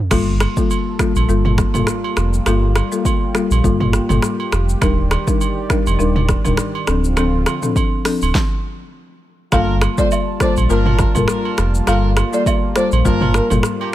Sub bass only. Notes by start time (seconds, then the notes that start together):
0.11 G1
1.15 A#1
1.29 G1
1.75 G1
2.17 F1
2.46 G1
3.51 A#1
3.64 G1
4.10 G1
4.53 F1
4.82 D#1
5.86 F1
6.00 D#1
6.45 D#1
6.88 D1
8.22 D1
9.53 G1
10.57 A#1
10.70 G1
11.16 G1
11.58 F1
11.88 G1
12.92 A#1
13.05 G1
13.51 G1